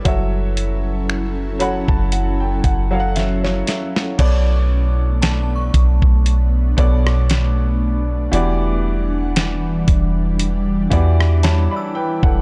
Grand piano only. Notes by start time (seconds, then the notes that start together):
0.05 F#3 F#4 A4 C#5 E5
1.59 F#3 F#4 A4 C#5 F#5 B5
1.89 A5
2.12 F#5
2.40 G5
2.64 F#5
2.91 F#3 F#4 A4 C#5 F5
3.00 F#5
3.15 E5
3.44 C#5
3.68 E5
4.18 B2 B3 A4 C#5 D5
6.77 B2 B3 A4 C#5 D5
8.32 E3 B3 F#4 G4 D5
10.90 E3 B3 F#4 G4 D5
11.43 C#5 A5
11.71 D5 B5
11.95 B4 G5
12.23 A4 F#5